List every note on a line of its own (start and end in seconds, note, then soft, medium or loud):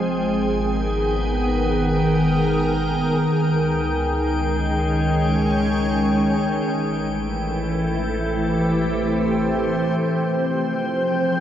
0.00 3.26 G#1 medium
0.00 6.64 D#3 medium
0.00 6.64 G#4 medium
0.00 9.97 G5 medium
0.36 3.31 B3 medium
1.47 4.64 A#4 medium
3.31 6.60 C#2 medium
3.50 6.64 G#3 medium
4.08 6.64 C#4 medium
4.80 6.64 C#5 medium
6.63 9.93 A1 medium
6.63 9.97 E3 medium
6.78 9.98 A3 medium
7.87 11.40 C4 medium
8.13 9.97 G4 medium
8.13 11.40 C5 medium
9.96 11.40 F3 medium
9.96 11.40 G5 medium
10.55 11.40 G#4 medium